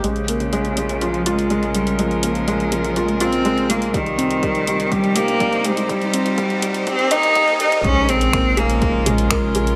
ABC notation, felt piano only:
X:1
M:4/4
L:1/8
Q:1/4=123
K:Bbdor
V:1 name="Felt piano" clef=bass
A, B, A, A, F F A, A, | A, B, A, A, F F A, A, | G, C G, G, G G G, G, | G, C G, G, G e G G, |
A, A, B, A A, A B A |]